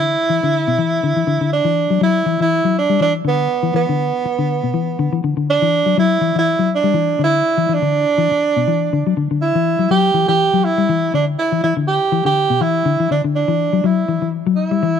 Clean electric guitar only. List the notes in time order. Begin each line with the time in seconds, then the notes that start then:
Already playing: D3
0.30 E3
0.43 D3
0.68 B2
0.78 E3
1.03 D3
1.16 E3
1.27 D3
1.41 D3
1.65 E3
1.90 F#3
2.01 F#3
2.26 E3
2.40 E3
2.65 F#3
2.90 G3
3.00 E3
3.25 D3
3.63 E3
3.74 E3
3.89 D3
4.26 muted clean electric guitar stroke
4.39 D3
4.64 B2
4.74 E3
4.99 D3
5.13 E3
5.24 D3
5.37 D3
5.62 E3
5.86 F#3
5.98 F#3
6.21 E3
6.36 E3
6.59 F#3
6.84 G3
6.94 E3
7.19 D3
7.58 E3
7.69 E3
7.82 D3
8.18 E3
8.31 muted clean electric guitar stroke
8.57 B2
8.68 E3
8.93 D3
9.07 F#3
9.17 D3
9.31 D3
9.55 E3
9.79 F#3
9.91 F#3
10.14 E3
10.29 E3
10.54 F#3
10.78 G3
10.89 E3
11.14 D3
11.52 E3
11.64 E3
11.77 D3
12.12 E3
12.25 D3
12.50 B2
12.61 E3
12.86 D3
13.00 E3
13.11 D3
13.24 D3
13.48 E3
13.73 F#3
13.84 F#3
14.08 E3
14.22 E3
14.47 F#3
14.71 G3
14.83 E3